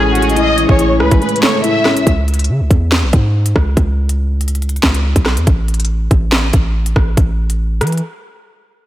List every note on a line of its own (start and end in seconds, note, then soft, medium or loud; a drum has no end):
0.00 0.65 A1 loud
0.00 0.37 A2 medium
0.00 2.03 C#3 medium
0.00 0.58 E3 medium
0.00 0.36 G#3 medium
0.00 0.79 A3 medium
0.00 2.03 C#4 medium
0.00 0.14 G#4 medium
0.00 2.03 G#4 medium
0.00 0.14 G#5 medium
0.15 1.22 C#4 medium
0.15 0.35 F#4 medium
0.15 0.36 F#5 medium
0.15 closed hi-hat medium
0.22 closed hi-hat medium
0.30 closed hi-hat soft
0.36 0.78 A2 loud
0.36 0.67 D#5 loud
0.36 0.68 D#6 medium
0.36 closed hi-hat medium
0.58 1.64 E3 medium
0.58 closed hi-hat medium
0.69 1.02 A1 loud
0.69 0.99 C#5 medium
0.69 0.99 C#6 medium
0.69 kick loud
0.79 1.20 A2 medium
0.79 closed hi-hat medium
1.00 1.11 C#2 medium
1.00 2.07 G#3 medium
1.00 1.20 B4 medium
1.00 1.21 B5 medium
1.00 cross-stick medium
1.11 1.21 A1 loud
1.11 kick loud
1.11 closed hi-hat medium
1.22 1.63 A2 medium
1.22 1.41 B4 medium
1.22 1.42 B5 medium
1.22 closed hi-hat soft
1.29 closed hi-hat medium
1.36 closed hi-hat medium
1.43 2.07 A3 medium
1.43 1.63 C#5 medium
1.43 1.63 C#6 medium
1.43 snare loud
1.64 2.07 A2 medium
1.64 2.04 E5 medium
1.64 2.05 E6 medium
1.64 closed hi-hat medium
1.85 2.07 C#4 medium
1.85 cross-stick medium
1.85 snare medium
1.97 closed hi-hat medium
2.07 2.51 C#2 loud
2.07 kick loud
2.07 closed hi-hat medium
2.28 closed hi-hat soft
2.34 closed hi-hat medium
2.39 closed hi-hat medium
2.44 closed hi-hat medium
2.49 2.62 C#3 loud
2.61 2.70 C#2 loud
2.71 3.05 E2 loud
2.71 kick loud
2.71 closed hi-hat medium
2.92 snare loud
3.03 3.13 B1 loud
3.13 3.54 G#2 loud
3.13 kick loud
3.13 closed hi-hat medium
3.46 closed hi-hat medium
3.56 3.76 C#2 loud
3.56 kick medium
3.56 cross-stick medium
3.77 4.79 C#2 loud
3.77 kick loud
3.77 closed hi-hat medium
4.09 closed hi-hat medium
4.41 closed hi-hat medium
4.48 closed hi-hat medium
4.55 closed hi-hat medium
4.62 closed hi-hat medium
4.69 closed hi-hat soft
4.76 closed hi-hat soft
4.83 5.15 C#2 loud
4.83 kick loud
4.83 snare loud
4.94 closed hi-hat medium
5.16 5.39 B1 loud
5.16 kick medium
5.16 closed hi-hat medium
5.26 cross-stick medium
5.26 snare medium
5.37 5.47 E2 medium
5.37 closed hi-hat medium
5.47 6.08 A1 loud
5.47 kick loud
5.47 closed hi-hat medium
5.68 closed hi-hat soft
5.74 closed hi-hat medium
5.80 closed hi-hat medium
5.85 closed hi-hat medium
6.11 6.52 A1 loud
6.11 kick loud
6.11 closed hi-hat medium
6.32 snare loud
6.53 6.94 A1 loud
6.53 kick loud
6.53 closed hi-hat medium
6.86 closed hi-hat medium
6.96 7.17 A1 loud
6.96 kick medium
6.96 cross-stick medium
7.17 7.83 A1 loud
7.17 kick loud
7.17 closed hi-hat medium
7.50 closed hi-hat medium
7.81 8.01 E3 loud
7.81 cross-stick medium
7.81 closed hi-hat medium
7.87 closed hi-hat medium
7.92 closed hi-hat medium
7.97 closed hi-hat soft